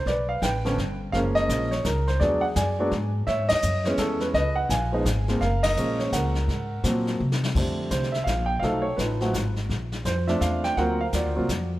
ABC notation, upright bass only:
X:1
M:3/4
L:1/8
Q:"Swing" 1/4=168
K:Gblyd
V:1 name="Upright bass" clef=bass
=B,,,2 =A,,,2 =G,,,2 | G,,,2 B,,,2 D,,2 | =E,,2 ^F,,2 ^G,,2 | (3=A,, ^G,, =E,, _G,,2 E,,2 |
D,,2 B,,,2 A,,,2 | G,,,2 B,,,2 D,,2 | A,,2 B,,2 C,2 | [K:F] F,,2 C,,2 B,,,2 |
=B,,,2 A,,,2 _A,,,2 | B,,,2 F,,2 E,,2 | D,,2 (3_E,, D,, C,, ^E,,2 |]